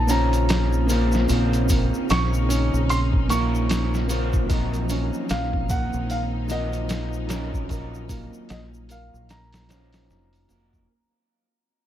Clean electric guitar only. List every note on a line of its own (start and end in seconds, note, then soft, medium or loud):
0.07 0.84 A#3 medium
0.07 0.85 C#4 medium
0.07 0.86 F4 medium
0.07 0.86 C5 medium
0.87 1.24 A#3 medium
0.87 1.25 C#4 medium
0.87 1.26 F4 medium
0.87 1.26 C5 loud
1.25 3.24 A#3 medium
1.25 3.25 C#4 medium
1.30 3.27 C4 medium
1.30 3.26 F4 medium
3.28 4.05 A#3 medium
3.28 4.06 C#4 medium
3.28 4.06 F4 medium
3.28 4.07 A#4 medium
4.08 4.45 A#3 medium
4.08 4.45 C#4 medium
4.08 4.46 F4 medium
4.08 4.46 C5 medium
4.45 6.43 F#3 medium
4.45 6.45 D#4 medium
4.50 6.46 F3 medium
4.50 6.47 A#4 medium
6.48 7.25 F#3 medium
6.48 7.25 D#4 medium
6.48 7.26 F4 medium
6.48 7.27 C5 medium
7.27 7.64 F#3 medium
7.27 7.65 D#4 medium
7.27 7.66 F4 medium
7.27 7.66 A#4 loud
7.65 9.64 F#3 medium
7.65 9.65 D#4 medium
7.70 9.66 F4 medium
7.70 9.67 A#4 medium
9.68 10.45 F#3 medium
9.68 10.45 D#4 medium
9.68 10.46 F4 medium
9.68 10.46 C5 medium
10.47 10.85 F#3 medium
10.47 10.85 D#4 medium
10.47 10.86 F4 medium
10.47 10.86 A#4 loud